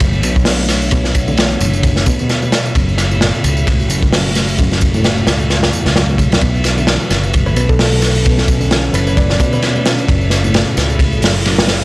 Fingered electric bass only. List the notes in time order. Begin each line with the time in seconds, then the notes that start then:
Already playing: F#1
0.24 B1
1.61 F#1
2.75 F#1
3.44 C#2
3.90 F#1
5.27 C#2
5.86 C#2
6.31 B1
6.42 B1
7.11 F#1
7.56 B1
8.94 F#1
10.08 F#1
10.77 C#2
11.23 F#1